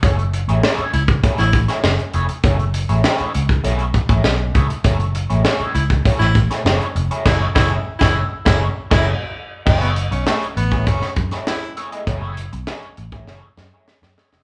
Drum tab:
CC |----------------|----------------|----------------|x----------x----|
HH |xxxx-xxxxxxx-xxx|xxxx-xxxxxxx--xx|xxxx-xxxx-xx-xxx|----------------|
SD |----o----o-oo---|----o-------o---|----o----o-oo---|o-o--o--o--o----|
BD |o------oo-o-----|o------o--oo--o-|o------oo-o-----|o-o--o--o--o----|

CC |x---------------|----------------|
HH |-xxx-xxxx-xx-xxx|x-xx-xxx--------|
SD |----o----o-oo---|----o---o-o-oooo|
BD |o------oo-o-----|o------o--------|